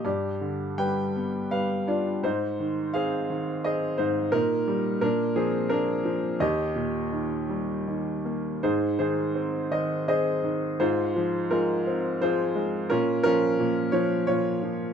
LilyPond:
<<
  \new Staff \with { instrumentName = "Grand piano" } { \time 3/4 \key ees \major \tempo 4 = 85 << { d''4 g''4 f''8 d''8 | c''4 f''4 ees''8 c''8 | bes'4 bes'8 aes'8 bes'4 | ees''2 r4 |
\key aes \major c''8 c''4 ees''8 ees''4 | c''4 bes'4 c''8. r16 | bes'8 bes'4 des''8 des''4 | } \\ { g'4 b'4 b'8 f'8 | ees'4 aes'4 aes'8 ees'8 | ees'4 d'8 c'8 d'4 | g'2 r4 |
<ees' aes'>8 <ees' aes'>4. <aes' c''>4 | <f' aes'>4 f'4 <f' aes'>4 | <des' f'>8 <des' f'>4. f'4 | } >> }
  \new Staff \with { instrumentName = "Grand piano" } { \clef bass \time 3/4 \key ees \major g,8 d8 g8 b8 g8 d'8 | aes,8 ees8 c'8 ees8 c'8 aes,8 | bes,8 g8 bes,8 f8 bes8 f8 | ees,8 bes,8 ees8 g8 ees8 bes8 |
\key aes \major aes,8 ees8 c'8 ees8 c'8 ees8 | aes,8 f8 aes8 c'8 f8 aes8 | bes,8 f8 bes,8 f8 bes,8 f8 | }
>>